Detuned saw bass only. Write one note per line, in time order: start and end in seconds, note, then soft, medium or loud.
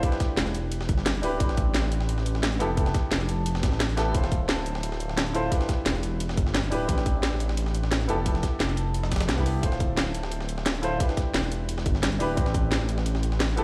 0.37 0.88 E1 medium
0.89 1.22 G1 medium
1.23 1.39 D1 medium
1.40 2.62 A1 loud
2.60 2.93 F1 loud
3.12 3.65 F1 medium
3.63 4.13 A1 loud
4.15 5.50 D1 loud
5.86 6.37 E1 medium
6.37 6.70 G1 loud
6.72 6.87 D1 loud
6.89 8.07 A1 medium
8.09 8.42 F1 loud
8.60 9.30 F1 medium
9.29 9.62 C2 loud
9.63 10.99 D1 loud
11.34 11.85 E1 medium
11.86 12.19 G1 loud
12.20 12.36 D1 medium
12.37 13.59 A1 loud
13.57 13.64 F1 loud